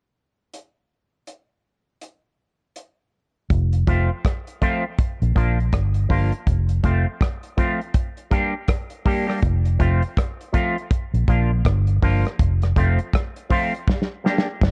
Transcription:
0.54 closed hi-hat
1.27 closed hi-hat
2.01 closed hi-hat
2.76 closed hi-hat
3.50 fingered electric bass F1, kick, closed hi-hat
3.73 closed hi-hat
3.87 fingered electric bass F1, clean electric guitar F3 A3 C4 F4, kick, closed hi-hat
4.25 kick, cross-stick, closed hi-hat
4.47 closed hi-hat
4.61 clean electric guitar F3 A3 C4 F4, kick, closed hi-hat
4.99 kick, closed hi-hat
5.22 fingered electric bass A#1, closed hi-hat
5.35 fingered electric bass A#1, clean electric guitar F3 A#3 D4 F4, kick, closed hi-hat
5.60 closed hi-hat
5.72 fingered electric bass G1, kick, cross-stick, closed hi-hat
5.94 closed hi-hat
6.09 fingered electric bass G1, clean electric guitar F3 A#3 D4 F4, kick, open hi-hat
6.32 closed hi-hat
6.47 fingered electric bass F1, kick, closed hi-hat
6.69 closed hi-hat
6.83 fingered electric bass F1, clean electric guitar F3 A3 C4 F4, kick, closed hi-hat
7.21 kick, cross-stick, closed hi-hat
7.43 closed hi-hat
7.57 clean electric guitar F3 A3 C4 F4, kick, closed hi-hat
7.81 closed hi-hat
7.94 kick, closed hi-hat
8.17 closed hi-hat
8.31 clean electric guitar G3 A#3 D4 G4, kick, closed hi-hat
8.68 kick, cross-stick, closed hi-hat
8.90 closed hi-hat
9.05 clean electric guitar G3 A#3 D4 G4, kick, open hi-hat
9.27 clean electric guitar G3 A#3 D4 G4, cross-stick
9.42 fingered electric bass F1, kick, closed hi-hat
9.65 closed hi-hat
9.79 fingered electric bass F1, clean electric guitar F3 A3 C4 F4, kick, closed hi-hat
10.02 closed hi-hat
10.17 kick, cross-stick, closed hi-hat
10.41 closed hi-hat
10.53 clean electric guitar F3 A3 C4 F4, kick, closed hi-hat
10.78 closed hi-hat
10.91 kick, closed hi-hat
11.14 fingered electric bass A#1, closed hi-hat
11.28 fingered electric bass A#1, clean electric guitar F3 A#3 D4 F4, kick, closed hi-hat
11.65 fingered electric bass G1, kick, cross-stick, closed hi-hat
11.87 closed hi-hat
12.02 fingered electric bass G1, clean electric guitar F3 A#3 D4 F4, kick, open hi-hat
12.25 cross-stick, closed hi-hat
12.39 fingered electric bass F1, kick, closed hi-hat
12.62 cross-stick, closed hi-hat
12.76 fingered electric bass F1, clean electric guitar F3 A3 C4 F4, kick, closed hi-hat
12.99 closed hi-hat
13.13 kick, cross-stick, closed hi-hat
13.36 closed hi-hat
13.50 clean electric guitar F3 A3 C4 F4, kick, open hi-hat
13.75 closed hi-hat
13.88 kick, snare
14.02 snare
14.24 clean electric guitar G3 A#3 D4 G4, snare
14.38 snare
14.61 fingered electric bass G1, kick, snare

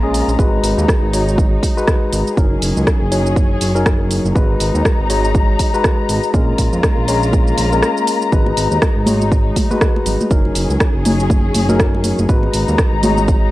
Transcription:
Already playing: analog synth bass A#1, string section A#3 F4 A#5
0.03 tine electric piano G#3 C#4 G#4
0.14 open hi-hat, shaker
0.28 analog synth bass A#1, shaker
0.39 analog synth bass G#1, tine electric piano G#3 F#4 B4, string section G#3 D#4, kick, shaker
0.63 analog synth bass G#1, open hi-hat, shaker
0.78 analog synth bass D#2, shaker
0.88 kick, cross-stick, shaker
1.02 analog synth bass G#1
1.13 tine electric piano G#3 F#4 C#5, open hi-hat, shaker
1.28 shaker
1.38 kick, shaker
1.63 kick, open hi-hat, shaker
1.77 tine electric piano G#3 F#4 B4, shaker
1.88 kick, cross-stick, shaker
2.12 analog synth bass G#1, open hi-hat, shaker
2.27 shaker
2.37 analog synth bass F#1, tine electric piano F#3 D#4 A#4, string section F#3 C#4 G#4, kick, shaker
2.62 analog synth bass F#1, open hi-hat, shaker
2.77 analog synth bass C#2, shaker
2.87 kick, cross-stick, shaker
3.01 analog synth bass F#1
3.12 tine electric piano F#3 D#4 C#5, open hi-hat, shaker
3.26 shaker
3.36 kick, shaker
3.61 analog synth bass F#1, open hi-hat, shaker
3.75 tine electric piano F#3 D#4 A#4, shaker
3.86 kick, cross-stick, shaker
4.11 open hi-hat, shaker
4.25 analog synth bass F#1, shaker
4.35 analog synth bass G#1, string section G#3 D#4 A#5, tine electric piano G#3 F#4 B4, kick, shaker
4.60 analog synth bass G#1, open hi-hat, shaker
4.75 analog synth bass D#2, shaker
4.85 kick, cross-stick, shaker
5.00 analog synth bass G#1
5.10 tine electric piano G#3 F#4 C#5, open hi-hat, shaker
5.25 shaker
5.35 kick, shaker
5.59 kick, open hi-hat, shaker
5.74 tine electric piano G#3 F#4 B4, shaker
5.84 kick, cross-stick, shaker
6.09 analog synth bass G#1, open hi-hat, shaker
6.23 shaker
6.34 analog synth bass A#1, tine electric piano G#3 C#4 A#4, string section A#3 F4 A#5, kick, shaker
6.58 analog synth bass A#1, kick, open hi-hat, shaker
6.73 analog synth bass F2, shaker
6.83 kick, cross-stick, shaker
6.98 analog synth bass A#1
7.08 tine electric piano G#3 C#4 C#5, open hi-hat, shaker
7.23 shaker
7.33 kick, shaker
7.47 shaker
7.58 analog synth bass A#1, open hi-hat, shaker
7.73 tine electric piano G#3 C#4 A#4, shaker
7.82 cross-stick, shaker
7.97 shaker
8.07 open hi-hat, shaker
8.22 shaker
8.32 analog synth bass G#1, string section G#3 D#4, tine electric piano G#3 F#4 B4, kick, shaker
8.46 muted conga
8.57 analog synth bass G#1, open hi-hat, shaker
8.71 analog synth bass D#2, shaker
8.82 kick, cross-stick, muted conga, shaker
8.96 analog synth bass G#1
9.06 tine electric piano G#3 F#4 C#5, open hi-hat, high conga, shaker
9.22 muted conga, shaker
9.32 kick, shaker
9.56 kick, open hi-hat, muted conga, high conga, low conga, shaker
9.71 tine electric piano G#3 F#4 B4, high conga, shaker
9.81 kick, cross-stick, shaker
9.96 muted conga
10.06 analog synth bass G#1, open hi-hat, low conga, shaker
10.21 high conga, shaker
10.30 analog synth bass F#1, string section F#3 C#4 G#4, tine electric piano F#3 D#4 A#4, kick, shaker
10.45 muted conga
10.55 analog synth bass F#1, open hi-hat, shaker
10.69 analog synth bass C#2, shaker
10.80 kick, cross-stick, muted conga, shaker
10.94 analog synth bass F#1
11.05 tine electric piano F#3 D#4 C#5, open hi-hat, high conga, shaker
11.20 muted conga, shaker
11.30 kick, high conga, shaker
11.54 analog synth bass F#1, open hi-hat, muted conga, high conga, shaker
11.69 tine electric piano F#3 D#4 A#4, high conga, shaker
11.80 kick, cross-stick, shaker
11.95 muted conga
12.04 open hi-hat, high conga, shaker
12.19 analog synth bass F#1, high conga, shaker
12.29 analog synth bass G#1, string section G#3 D#4 A#5, tine electric piano G#3 F#4 B4, kick, shaker
12.43 muted conga
12.53 analog synth bass G#1, open hi-hat, shaker
12.68 analog synth bass D#2, shaker
12.78 kick, cross-stick, muted conga, shaker
12.93 analog synth bass G#1
13.03 tine electric piano G#3 F#4 C#5, open hi-hat, high conga, shaker
13.18 muted conga, shaker
13.28 kick, shaker

